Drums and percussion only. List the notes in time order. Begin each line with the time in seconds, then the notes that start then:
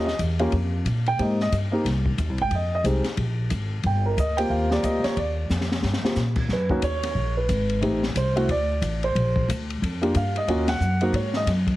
0.08 snare
0.19 kick, hi-hat pedal, ride
0.39 ride
0.52 kick, ride
0.85 kick, hi-hat pedal, ride
1.06 ride
1.19 kick, ride
1.40 snare
1.52 kick, hi-hat pedal, ride
1.85 kick, snare, ride
2.06 kick
2.18 kick, hi-hat pedal, ride
2.38 ride
2.51 kick, ride
2.84 kick, hi-hat pedal, ride
3.04 snare, ride
3.17 kick, ride
3.50 kick, hi-hat pedal, ride
3.83 kick, ride
4.17 kick, hi-hat pedal, ride
4.38 ride
4.50 kick
4.71 snare
4.83 kick, hi-hat pedal, ride
5.04 snare, ride
5.17 kick, ride
5.50 snare, hi-hat pedal
5.61 snare
5.72 snare
5.82 snare
5.93 snare
6.05 snare
6.15 snare, hi-hat pedal
6.36 kick, crash
6.49 kick, snare
6.69 kick
6.82 kick, hi-hat pedal, ride
7.03 snare, ride
7.16 kick
7.49 kick, hi-hat pedal, ride
7.69 ride
7.82 kick, ride
8.03 snare
8.15 kick, hi-hat pedal, ride
8.37 ride
8.48 kick, ride
8.82 kick, hi-hat pedal, ride
9.03 ride
9.15 kick, ride
9.36 kick
9.49 kick, hi-hat pedal, ride
9.70 ride
9.82 kick, ride
10.03 ride
10.14 kick, hi-hat pedal, ride
10.36 ride
10.48 kick, ride
10.68 snare, ride
10.81 hi-hat pedal
11.01 ride
11.13 kick, ride
11.33 snare
11.46 kick, snare, hi-hat pedal, ride
11.67 kick, ride